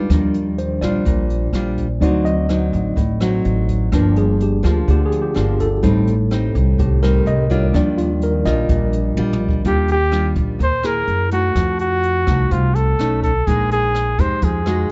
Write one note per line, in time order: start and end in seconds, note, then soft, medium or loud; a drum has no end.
0.00 0.78 G3 medium
0.00 0.11 G#3 soft
0.00 0.78 D4 medium
0.00 0.11 D#4 soft
0.00 0.78 F4 medium
0.00 0.12 B4 medium
0.09 0.77 D#2 loud
0.09 1.04 D#3 medium
0.09 0.41 F3 soft
0.09 0.41 G3 soft
0.09 0.42 D4 soft
0.09 kick medium
0.09 cross-stick medium
0.09 closed hi-hat medium
0.34 closed hi-hat soft
0.58 0.81 C5 medium
0.58 closed hi-hat soft
0.81 1.04 A#1 medium
0.81 1.50 G3 medium
0.81 1.50 D4 medium
0.81 1.51 F4 medium
0.81 1.26 D5 medium
0.81 kick soft
0.81 cross-stick medium
0.81 closed hi-hat soft
1.05 1.50 A#1 medium
1.05 1.99 A#2 medium
1.05 kick medium
1.05 closed hi-hat medium
1.30 closed hi-hat soft
1.53 1.97 A#1 medium
1.53 1.86 G3 medium
1.53 1.86 D4 medium
1.53 1.86 F4 medium
1.53 cross-stick medium
1.53 closed hi-hat soft
1.77 kick soft
1.77 closed hi-hat soft
2.00 2.69 D2 medium
2.00 2.95 D3 medium
2.00 3.88 F#3 soft
2.00 2.45 F#3 medium
2.00 3.88 C4 soft
2.00 2.46 C4 medium
2.00 3.88 D#4 soft
2.00 2.46 D#4 medium
2.00 2.25 D5 medium
2.00 kick medium
2.00 closed hi-hat medium
2.25 2.69 D#5 medium
2.25 closed hi-hat soft
2.49 2.97 F#3 medium
2.49 2.97 C4 medium
2.49 2.97 D#4 medium
2.49 cross-stick medium
2.49 closed hi-hat soft
2.73 2.95 A1 medium
2.73 kick soft
2.73 closed hi-hat soft
2.96 3.41 A1 medium
2.96 3.89 A2 medium
2.96 kick medium
2.96 closed hi-hat medium
3.20 3.88 F#3 medium
3.20 3.89 C4 medium
3.20 3.89 D#4 medium
3.20 cross-stick medium
3.20 closed hi-hat soft
3.44 3.89 A1 medium
3.44 closed hi-hat soft
3.68 kick soft
3.68 closed hi-hat soft
3.92 4.60 G1 loud
3.92 4.85 G2 medium
3.92 4.60 F3 soft
3.92 4.40 F3 medium
3.92 4.40 A#3 medium
3.92 4.61 A#3 soft
3.92 4.40 D4 medium
3.92 4.61 D4 soft
3.92 kick medium
3.92 cross-stick medium
3.92 closed hi-hat medium
4.16 4.40 G#4 medium
4.16 closed hi-hat soft
4.40 4.64 G4 medium
4.40 closed hi-hat soft
4.63 4.86 D2 medium
4.63 5.31 F3 medium
4.63 5.31 A#3 medium
4.63 5.32 D4 medium
4.63 4.88 F4 medium
4.63 kick soft
4.63 cross-stick medium
4.63 closed hi-hat soft
4.88 5.32 D2 medium
4.88 5.81 D3 medium
4.88 5.05 G4 medium
4.88 kick medium
4.88 closed hi-hat medium
5.06 5.20 G#4 medium
5.12 closed hi-hat soft
5.22 5.36 G4 medium
5.34 5.80 G1 medium
5.34 5.67 F3 medium
5.34 5.67 A#3 medium
5.34 5.67 D4 medium
5.34 5.60 F4 medium
5.34 cross-stick medium
5.34 closed hi-hat soft
5.60 6.27 A4 medium
5.60 kick soft
5.60 closed hi-hat soft
5.83 6.51 A1 loud
5.83 6.76 A2 medium
5.83 6.14 G3 medium
5.83 6.51 G3 soft
5.83 6.51 A3 soft
5.83 6.14 C4 medium
5.83 6.14 D#4 medium
5.83 6.51 D#4 soft
5.83 kick medium
5.83 closed hi-hat medium
6.07 closed hi-hat soft
6.31 6.99 G3 medium
6.31 6.99 C4 medium
6.31 6.99 D#4 medium
6.31 cross-stick medium
6.31 closed hi-hat soft
6.55 6.77 C2 medium
6.55 kick soft
6.55 closed hi-hat soft
6.78 7.23 C2 medium
6.78 7.71 A2 medium
6.78 7.02 G4 medium
6.78 kick medium
6.78 closed hi-hat medium
7.03 7.46 G3 medium
7.03 7.46 C4 medium
7.03 7.47 D#4 medium
7.03 7.26 A#4 medium
7.03 cross-stick medium
7.03 closed hi-hat soft
7.26 7.70 C2 medium
7.26 7.50 D#5 medium
7.26 closed hi-hat soft
7.50 8.41 G3 medium
7.50 8.42 D4 medium
7.50 8.42 F4 medium
7.50 7.73 C#5 medium
7.50 kick soft
7.50 closed hi-hat soft
7.73 8.41 D#2 loud
7.73 8.67 D#3 medium
7.73 8.41 F3 soft
7.73 8.41 G3 soft
7.73 8.42 D4 soft
7.73 7.98 D5 medium
7.73 kick medium
7.73 cross-stick medium
7.73 closed hi-hat medium
7.98 8.21 F4 medium
7.98 closed hi-hat soft
8.21 8.46 A#4 medium
8.21 closed hi-hat soft
8.45 8.67 A#1 medium
8.45 9.13 G3 medium
8.45 9.13 D4 medium
8.45 9.13 F4 medium
8.45 9.13 D#5 medium
8.45 kick soft
8.45 cross-stick medium
8.45 closed hi-hat soft
8.69 9.14 A#1 medium
8.69 9.62 A#2 medium
8.69 kick medium
8.69 closed hi-hat medium
8.93 closed hi-hat soft
9.17 9.61 A#1 medium
9.17 9.63 G3 medium
9.17 9.63 D4 medium
9.17 9.63 F4 medium
9.17 high tom soft
9.33 mid tom soft
9.49 kick medium
9.65 10.32 D#2 medium
9.65 10.58 D#3 medium
9.65 9.95 G3 medium
9.65 9.96 D4 medium
9.65 9.96 F4 medium
9.65 9.88 G4 loud
9.65 kick medium
9.65 closed hi-hat medium
9.88 10.35 G4 loud
9.88 closed hi-hat soft
10.12 10.59 G3 medium
10.12 10.60 D4 soft
10.12 10.60 F4 medium
10.12 cross-stick medium
10.12 closed hi-hat soft
10.35 10.58 A#1 medium
10.35 kick medium
10.35 closed hi-hat soft
10.59 11.04 D#2 medium
10.59 11.05 A#2 medium
10.59 10.87 C5 loud
10.59 kick medium
10.59 closed hi-hat medium
10.83 11.27 A#3 medium
10.83 11.28 E4 medium
10.83 11.28 G#4 medium
10.83 11.32 A#4 loud
10.83 cross-stick medium
10.83 closed hi-hat soft
11.08 11.52 F#2 medium
11.08 closed hi-hat soft
11.31 12.23 A3 medium
11.31 12.23 D#4 medium
11.31 11.77 F#4 medium
11.31 closed hi-hat soft
11.55 12.23 F2 medium
11.55 12.49 F3 medium
11.55 kick medium
11.55 cross-stick medium
11.55 closed hi-hat medium
11.79 12.53 F#4 loud
11.79 closed hi-hat soft
12.03 closed hi-hat soft
12.27 12.49 C2 medium
12.27 12.95 A3 medium
12.27 12.96 D#4 medium
12.27 12.96 F#4 medium
12.27 kick medium
12.27 cross-stick medium
12.27 closed hi-hat soft
12.51 12.95 C2 medium
12.51 12.96 C3 medium
12.51 12.77 F4 medium
12.51 kick medium
12.51 closed hi-hat medium
12.75 13.22 A4 loud
12.75 closed hi-hat soft
12.99 13.44 B1 medium
12.99 13.31 A3 medium
12.99 13.31 C#4 medium
12.99 13.31 D#4 medium
12.99 cross-stick medium
12.99 closed hi-hat soft
13.23 13.48 A4 medium
13.23 kick medium
13.23 closed hi-hat soft
13.47 14.14 A#1 loud
13.47 14.40 A#2 medium
13.47 14.15 G#3 medium
13.47 14.15 D#4 medium
13.47 13.70 G#4 loud
13.47 kick medium
13.47 closed hi-hat medium
13.71 14.22 G#4 loud
13.71 closed hi-hat soft
13.95 cross-stick medium
13.95 closed hi-hat soft
14.18 14.40 F2 medium
14.18 14.62 G#3 medium
14.18 14.62 D#4 medium
14.18 14.63 G4 medium
14.18 14.45 C5 medium
14.18 kick medium
14.18 closed hi-hat soft
14.42 14.86 F2 medium
14.42 14.87 F3 medium
14.42 14.92 G#4 medium
14.42 kick medium
14.42 closed hi-hat medium
14.66 14.92 G#3 medium
14.66 14.92 D#4 medium
14.66 14.92 F#4 medium
14.66 cross-stick medium
14.66 closed hi-hat soft